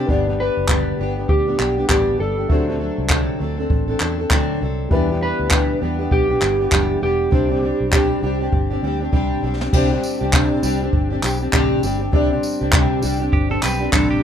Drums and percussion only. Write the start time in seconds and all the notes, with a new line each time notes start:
0.09 kick
0.68 kick, clap
1.29 kick
1.60 clap
1.89 kick, clap
2.50 kick
3.09 kick, clap
3.70 kick
4.00 clap
4.30 kick, clap
4.91 kick
5.51 kick, clap
6.11 kick
6.42 clap
6.72 kick, clap
7.32 kick
7.92 kick, clap
8.53 kick
9.13 kick
9.61 snare
9.73 kick, crash
10.04 tambourine
10.33 kick, clap
10.63 tambourine
10.93 kick
11.23 clap, tambourine
11.53 kick, clap
11.83 tambourine
12.13 kick
12.43 tambourine
12.73 kick, clap
13.03 tambourine
13.33 kick
13.63 clap, tambourine
13.93 kick, clap